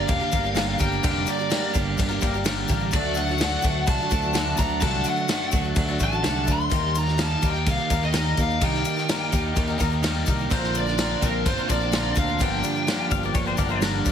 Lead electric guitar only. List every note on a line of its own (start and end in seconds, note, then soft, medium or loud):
0.08 0.75 F5 medium
0.80 1.03 G5 loud
1.04 1.28 G5 loud
1.28 1.71 D5 medium
2.94 3.17 D5 medium
3.16 3.83 F#5 medium
3.88 4.54 A5 loud
4.58 4.80 A#5 loud
4.81 5.06 A5 loud
5.06 5.50 F#5 medium
6.04 6.51 A5 loud
6.52 6.98 C6 loud
6.98 7.21 A#5 medium
7.22 7.45 A5 loud
7.48 7.68 G5 medium
7.70 8.01 F5 medium
8.04 8.36 D#5 medium
8.41 8.63 F5 medium
8.65 10.25 G5 medium
10.53 10.74 C5 medium
10.78 11.25 D5 medium
11.24 11.47 A#4 medium
11.48 11.69 C5 medium
11.69 12.13 D5 loud
12.17 12.41 F5 loud
12.43 13.79 G5 loud